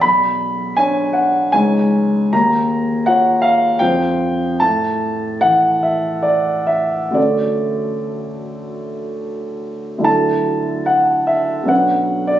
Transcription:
\new Staff \with { instrumentName = "Grand piano" } { \time 3/4 \key a \dorian \tempo 4 = 74 << { b''4 gis''8 fis''8 gis''4 | bes''4 fis''8 f''8 g''4 | a''4 fis''8 e''8 d''8 e''8 | d''2~ d''8 r8 |
a''4 fis''8 e''8 fis''8. d''16 | } \\ { b,,4 <d' cis''>4 <cis, dis' cis''>4 | ees,4 <f' cis''>4 <f, f' c''>4 | a,4 e2 | <d, a cis' fis' a'>2. |
<d, fis d' e' a'>2 <b,, fis cis' d' b'>4 | } >> }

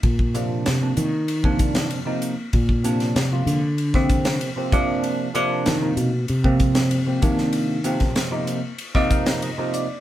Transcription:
<<
  \new Staff \with { instrumentName = "Tine electric piano" } { \time 4/4 \key c \dorian \tempo 4 = 96 r1 | r1 | r1 | r2 r8 f''8 ees''8 d''8 | }
  \new Staff \with { instrumentName = "Tine electric piano" } { \time 4/4 \key c \dorian r8 <c f bes d'>8. <c f bes d'>8 <bes d'>16 r16 <c f bes d'>4 <c f bes ees'>8 <bes f'>16 | r8 <c f bes d'>8. <c f bes f'>8 r8 <c f bes c'>4 <c f bes c'>16 <c f bes d'>8~ | <c f bes d'>8 <c f bes d'>8. <c f bes ees'>8 <bes f'>16 r16 <c f bes c'>4 <c f bes c'>16 <c f bes d'>8~ | <c f bes d'>8 <c f bes c'>8. <c f bes ees'>8 <bes f'>16 r16 <c f bes ees'>4 <c f bes ees'>8 <bes d'>16 | }
  \new Staff \with { instrumentName = "Fretless electric bass" } { \clef bass \time 4/4 \key c \dorian bes,4 c8 ees4. r4 | bes,4 c8 d4. r4 | r4 ees8 b,8 c4. ees8~ | ees4 r2. | }
  \new DrumStaff \with { instrumentName = "Drums" } \drummode { \time 4/4 <bd cymr>16 bd16 <hhp cymr>8 <cymr sn>8 <hhp cymr>8 cymr16 bd16 <hhp bd cymr>16 <cymr sn>16 cymr8 <hhp cymr>8 | <bd cymr>16 bd16 <hhp cymr>16 <cymr sn>16 <cymr sn>8 <hhp cymr>8 cymr16 <bd sn>16 <hhp bd cymr>16 <cymr sn>16 cymr8 <hhp bd cymr>8 | cymr8 <hhp cymr>8 <cymr sn>8 <hhp cymr>8 cymr16 bd16 <hhp bd cymr>16 <cymr sn>16 cymr8 <hhp bd cymr>16 sn16 | cymr8 <hhp cymr>16 <bd cymr sn>16 <cymr sn>8 <hhp cymr>8 cymr16 <bd sn>16 <hhp bd cymr>16 <cymr sn>16 cymr8 <hhp cymr>8 | }
>>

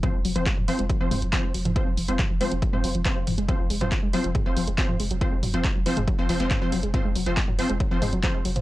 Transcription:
<<
  \new Staff \with { instrumentName = "Synth stab" } { \time 4/4 \key f \phrygian \tempo 4 = 139 <f c' c''>16 r8 <f c' c''>16 r8 <f c' c''>16 r8 <f c' c''>8 r16 <f c' c''>16 r8. | <f c' c''>16 r8 <f c' c''>16 r8 <f c' c''>16 r8 <f c' c''>8 r16 <f c' c''>16 r8. | <f c' c''>16 r8 <f c' c''>16 r8 <f c' c''>16 r8 <f c' c''>8 r16 <f c' c''>16 r8. | <f c' c''>16 r8 <f c' c''>16 r8 <f c' c''>16 r8 <f c' c''>16 <f c' c''>16 <f c' c''>8 <f c' c''>16 r8 |
<f c' c''>16 r8 <f c' c''>16 r8 <f c' c''>16 r8 <f c' c''>8 r16 <f c' c''>16 r8. | }
  \new Staff \with { instrumentName = "Synth arpeggio sound" } { \clef bass \time 4/4 \key f \phrygian f16 aes16 ges16 f16 aes16 ges16 f16 aes16 ges16 f16 aes16 ges16 f16 aes16 ges16 f16 | aes16 ges16 f16 aes16 ges16 f16 aes16 ges16 f16 aes16 ges16 f16 aes16 ges16 f16 aes16 | ges16 f16 aes16 ges16 f16 aes16 ges16 f16 aes16 ges16 f16 aes16 ges16 f16 aes16 ges16 | f16 aes16 ges16 f16 aes16 ges16 f16 aes16 ges16 f16 f16 aes16 des'16 f16 ges16 aes16 |
f16 aes16 ges16 f16 aes16 ges16 f16 aes16 ges16 f16 aes16 ges16 f16 aes16 ges16 f16 | }
  \new Staff \with { instrumentName = "Sub bass" } { \clef bass \time 4/4 \key f \phrygian r16 f,,16 f,,16 f,,16 r16 f,,16 r16 f,,16 r16 f,,16 f,,16 f,,16 r8 f,,16 f,,16 | r16 f,,16 f,,16 f,,16 r16 f,,16 r16 f,,16 r16 f,,16 f,,16 f,,16 r8 f,,16 f,,16 | r16 f,,16 f,,16 f,,16 r16 f,,16 r16 f,,16 r16 f,,16 f,,16 f,,16 r8 f,,16 f,,16 | r16 f,,16 f,,16 f,,16 r16 f,,16 r16 f,,16 r16 f,,16 f,,16 f,,16 r8 f,,16 f,,16 |
r16 f,,16 f,,16 f,,16 r16 f,,16 r16 f,,16 r16 f,,16 f,,16 f,,16 r8 f,,16 f,,16 | }
  \new DrumStaff \with { instrumentName = "Drums" } \drummode { \time 4/4 <hh bd toml>8 hho16 hh16 <hc hh bd>16 toml16 hho16 hh16 <hh bd>8 <hho toml>16 hh16 <hc hh bd>8 hho16 <hh toml>16 | <hh bd>8 hho16 hh16 <hc hh bd toml>8 hho16 hh16 <hh bd>16 toml16 hho16 hh16 <hc hh bd>8 <hho toml>16 hh16 | <hh bd>8 hho16 <hh toml>16 <hc hh bd>8 hho16 hh16 <hh bd toml>8 hho16 hh16 <hc hh bd>16 toml16 hho16 hh16 | <hh bd>8 <hho toml>16 hh16 <hc hh bd>8 hho16 <hh toml>16 <hh bd>8 hho16 hh16 <hc hh bd toml>8 hho16 hh16 |
<hh bd toml>8 hho16 hh16 <hc hh bd>16 toml16 hho16 hh16 <hh bd>8 <hho toml>16 hh16 <hc hh bd>8 hho16 <hh toml>16 | }
>>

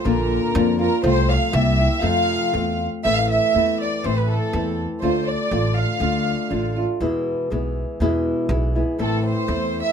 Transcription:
<<
  \new Staff \with { instrumentName = "Violin section" } { \time 2/4 \key f \major \tempo 4 = 121 bes'4. bes'8 | c''8 f''8 e''4 | f''4. r8 | \key a \minor e''16 f''16 e''4 d''8 |
c''16 b'16 a'4 r8 | c''8 d''4 f''8~ | f''4. r8 | r2 |
r2 | a'8 c''8~ \tuplet 3/2 { c''4 e''8 } | }
  \new Staff \with { instrumentName = "Nylon-string guitar" } { \time 2/4 \key f \major <bes, d bes d' f'>4 <d bes d' f'>8 <bes d' f'>8 | <c f a c' f'>4 <g bes e' g'>8 <bes e' g'>8 | <f, c f a c' f'>4 <a c' f'>4 | \key a \minor <a, e a c' e'>4 <e a c' e'>4 |
<a, e a c' e'>4 <e a c' e'>4 | <d a d' f'>4 <d a d' f'>4 | <d a d' f'>4 <d a d' f'>8 <a d' f'>8 | <e, b, e gis b e'>4 <e gis b e'>4 |
<e, b, e gis b e'>4 <e gis b e'>8 <e gis b e'>8 | <a, e a c' e'>4 <e a c' e'>4 | }
  \new Staff \with { instrumentName = "Upright bass" } { \clef bass \time 2/4 \key f \major bes,,4 f,4 | c,4 c,4 | f,4 e,4 | \key a \minor a,,4 e,4 |
a,,4 e,4 | d,4 a,,4 | d,4 a,,4 | e,4 b,,4 |
e,4 b,,4 | a,,4 e,4 | }
>>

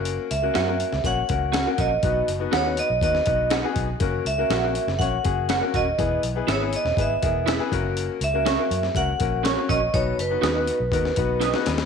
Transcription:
<<
  \new Staff \with { instrumentName = "Vibraphone" } { \time 4/4 \key fis \mixolydian \tempo 4 = 122 r8 e''4. fis''4. dis''8~ | dis''8 r8 cis''8 dis''8 dis''4 r4 | r8 e''4. fis''4. dis''8~ | dis''8 r8 cis''8 dis''8 e''4 r4 |
r8 e''4. fis''4 r8 dis''8 | cis''8 b'2. r8 | }
  \new Staff \with { instrumentName = "Clean electric guitar" } { \time 4/4 \key fis \mixolydian r4 <cis' fis' ais' fis''>8 r4. <cis' fis' ais' fis''>8 <cis' fis' ais' fis''>8 | r4 <dis' fis' b' fis''>8 r4. <dis' fis' b' fis''>8 r8 | r4 <cis' fis' ais' fis''>8 r4. <cis' fis' ais' fis''>8 <cis' fis' ais' fis''>8 | r4 <e' gis' b' e''>8 r4. <e' gis' b' e''>8 r8 |
r4 <cis' fis' ais' cis''>8 r4. <cis' fis' ais' cis''>8 <cis' fis' ais' cis''>8 | r4 <dis' fis' b' dis''>8 r4. <dis' fis' b' dis''>8 r8 | }
  \new Staff \with { instrumentName = "Upright piano" } { \time 4/4 \key fis \mixolydian <ais cis' fis' ais'>8 r16 <ais cis' fis' ais'>16 r16 <ais cis' fis' ais'>8 r16 <ais cis' fis' cis''>16 r16 <ais cis' fis' ais'>8 r16 <ais cis' fis' ais'>8 r16 | <b dis' fis' b'>8 r16 <b dis' fis' b'>16 r16 <b dis' fis' b'>8 r16 <b dis' fis' b'>16 r16 <b dis' fis' b'>8 r16 <b dis' fis' gis'>8 r16 | <ais cis' fis' ais'>8 r16 <ais cis' fis' ais'>16 r16 <ais cis' fis' ais'>8 r16 <ais cis' fis' cis''>16 r16 <ais cis' fis' gis'>8 r16 <ais cis' fis' ais'>8 r16 | <b e' gis' b'>8 r16 <b e' gis' b'>16 r16 <b e' gis' b'>8 r16 <b e' gis' b'>16 r16 <b e' gis' ais'>8 r16 <b e' gis' b'>16 <ais cis' fis' ais'>8~ |
<ais cis' fis' ais'>8 r16 <ais cis' fis' ais'>16 r16 <ais cis' fis' ais'>8 r16 <ais cis' fis' ais'>16 r16 <ais cis' fis' ais'>8 r16 <ais cis' fis' cis''>8 r16 | <b dis' fis' b'>8 r16 <b dis' fis' b'>16 r16 <b dis' fis' b'>8 r16 <b dis' fis' ais'>16 r16 <b dis' fis' b'>8 r16 <b dis' fis' b'>8 r16 | }
  \new Staff \with { instrumentName = "Upright piano" } { \clef bass \time 4/4 \key fis \mixolydian r1 | b,4. r2 r8 | r1 | e4. r2 r8 |
r1 | b,4. r2 r8 | }
  \new Staff \with { instrumentName = "Fingered electric bass" } { \clef bass \time 4/4 \key fis \mixolydian fis,,8 cis,8 fis,8. cis,16 ais,,8 cis,4 ais,,8 | b,,8 fis,,8 dis,8. b,,16 dis,8 b,,4 b,,8 | fis,,8 cis,8 ais,,8. fis,,16 ais,,8 fis,,4 dis,,8 | e,,8 b,,8 gis,,8. e,,16 gis,,8 e,,4 fis,,8~ |
fis,,8 cis,4 fis,8 cis,8 ais,,4 ais,,8 | b,,8 fis,,8 dis,8. b,,16 dis,8 b,,4 dis,8 | }
  \new DrumStaff \with { instrumentName = "Drums" } \drummode { \time 4/4 hh8 hh8 <hh sn>8 hh16 sn16 <hh bd>8 <hh bd>8 <hh sn>8 <hh bd>8 | <hh bd>8 hh8 <hh sn>8 hh8 <hh bd>16 sn16 <hh bd>8 <hh sn>8 <hh bd>8 | <hh bd>8 hh8 <hh sn>8 hh16 sn16 <hh bd>8 <hh bd>8 <hh sn>8 <hh bd>8 | <hh bd>8 hh8 <hh sn>8 hh16 sn16 <hh bd>8 <hh bd>8 <hh sn>8 <hh bd>8 |
hh8 hh8 <hh sn>8 hh16 sn16 <hh bd>8 <hh bd>8 <hh sn>8 <hh bd>8 | <hh bd>8 hh8 <hh sn>8 hh8 <hh bd>16 sn16 <hh bd>8 <hh sn>16 sn16 <hh sn>16 sn16 | }
>>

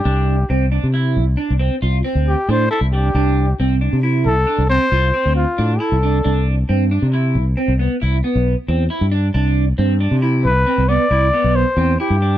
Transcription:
<<
  \new Staff \with { instrumentName = "Trumpet" } { \time 7/4 \key c \major \tempo 4 = 136 g'4 r1 g'8 c''8 a'8 g'8~ | g'4 r4. a'4 c''4. f'4 a'4~ | a'8 r1. r8 | r2 r8 b'4 d''4. c''4 g'4 | }
  \new Staff \with { instrumentName = "Clean electric guitar" } { \time 7/4 \key c \major d'4 c'8 d'8 e'4 d'8 c'8 f'8 c'4 d'8 e'8 d'8 | d'4 c'8 d'8 e'4 d'8 c'8 f'8 c'4 d'8 e'8 d'8 | d'4 c'8 d'8 e'4 c'8 b8 e'8 b4 c'8 e'8 d'8 | d'4 c'8 d'8 e'4 c'8 b8 e'8 b4 c'8 e'8 d'8 | }
  \new Staff \with { instrumentName = "Fretless electric bass" } { \clef bass \time 7/4 \key c \major c,4 c,8. c8. c,8 r16 c,8 r16 c,8 r16 d,8 r16 a,8 r16 c,8. | c,4 c,8. c8. c,8 r16 c,8 r16 c,8 r16 d,8 r16 a,8 r16 c,8. | c,4 g,8. c8. c,8 r16 c,8 r16 c,8 r16 b,,8 r16 e,8 r16 g,8. | c,4 g,8. c8. c,8 r16 c,8 r16 c,8 r16 b,,8 r16 e,8 r16 g,8. | }
>>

